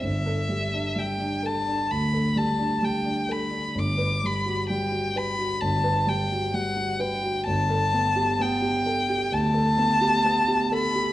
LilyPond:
<<
  \new Staff \with { instrumentName = "Violin" } { \time 4/4 \key g \major \tempo 4 = 65 e''4 g''8 a''8 b''8 a''8 g''8 b''8 | d'''8 b''8 g''8 b''8 a''8 g''8 fis''8 g''8 | a''4 g''4 a''4. b''8 | }
  \new Staff \with { instrumentName = "Grand piano" } { \time 4/4 \key g \major g,,16 a'16 g16 d'16 g16 d'16 a'16 d'16 d,16 a'16 g16 d'16 g16 d'16 a'16 d'16 | g,,16 b'16 g16 fis'16 g16 fis'16 b'16 fis'16 g,,16 b'16 g16 fis'16 g16 fis'16 b'16 fis'16 | g,,16 a'16 b16 g'16 b16 g'16 a'16 g'16 d,16 a'16 b16 g'16 b16 g'16 a'16 g'16 | }
>>